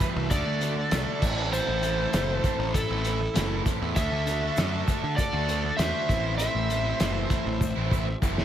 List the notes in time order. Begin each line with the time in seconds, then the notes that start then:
Already playing: E2 B2 E3 G3 B3 E4 B4 E5
0.00 E3 G3 B3 E4, kick, closed hi-hat, shaker
0.15 C2, muted overdriven electric guitar stroke
0.29 D2 D3 A3 D4 F#4 A4 D5, kick, closed hi-hat, shaker
0.44 D2 A3 D4 F#4
0.59 D3 A3 D4 F#4, closed hi-hat, shaker
0.75 muted distorted electric guitar stroke, muted overdriven electric guitar stroke
0.91 C2 D3 A3 D4 F#4, snare, closed hi-hat, tambourine, shaker
1.21 A1 A2 E3 A3 C4 E4, kick, crash, shaker
1.37 A3 C4 E4
1.52 A2 E3 A3 C4 E4 A4 C5, shaker
1.68 A1, muted distorted electric guitar stroke
1.82 E3 A3 C4 E4, closed hi-hat, shaker
1.98 A3 C4 E4
2.12 F#1 A2 E3 A3 C4 E4, snare, closed hi-hat, tambourine, shaker
2.43 E3 A3 C4 E4, kick, closed hi-hat, shaker
2.59 A1, muted overdriven electric guitar stroke
2.74 E4 A4, kick, closed hi-hat, shaker
2.88 A1 A3 C4 E4
3.04 E3 A3 C4 E4, closed hi-hat, shaker
3.20 muted overdriven electric guitar stroke, muted distorted electric guitar stroke
3.34 F#1 A2 E3 A3 C4 E4, snare, closed hi-hat, tambourine, shaker
3.65 E3 A3 C4 E4, kick, closed hi-hat, shaker
3.80 E2 A3 C4 E4
3.95 D2 D3 A3 D4 F#4 A4 E5, kick, closed hi-hat, shaker
4.12 D2, muted distorted electric guitar stroke
4.27 D3 A3 D4 F#4, closed hi-hat, shaker
4.41 A3 D4 F#4
4.56 F#2 D3 A3 D4 F#4, snare, closed hi-hat, tambourine, shaker
4.87 D3 A3 D4 F#4, kick, closed hi-hat, shaker
5.03 D3, muted overdriven electric guitar stroke
5.17 A4 D5, kick, closed hi-hat, shaker
5.32 D2 A3 D4 F#4
5.48 D3 A3 D4 F#4, closed hi-hat, shaker
5.63 muted overdriven electric guitar stroke, muted distorted electric guitar stroke
5.77 E2 D3 A3 D4 C5 E5, snare, closed hi-hat, tambourine, shaker
5.81 F#4
6.08 A1 A2 E3 A3 C4 E4, kick, closed hi-hat, shaker
6.23 A3 C4 E4
6.38 A2 E3 A3 C4 E4 C5 E5, closed hi-hat, shaker
6.55 A1, muted distorted electric guitar stroke
6.70 E3 A3 C4 E4, closed hi-hat, shaker
6.84 A3 C4 E4
6.99 F#1 A2 E3 A3 C4 E4, snare, closed hi-hat, tambourine, shaker
7.29 E3 A3 C4 E4, kick, closed hi-hat, shaker
7.45 A1, muted overdriven electric guitar stroke
7.61 kick, shaker
7.76 A1 A3 C4 E4
7.91 E3 A3 C4 E4, kick, shaker
8.07 muted overdriven electric guitar stroke, muted distorted electric guitar stroke
8.22 F#1 A2 E3 A3 C4 E4, kick, shaker
8.38 snare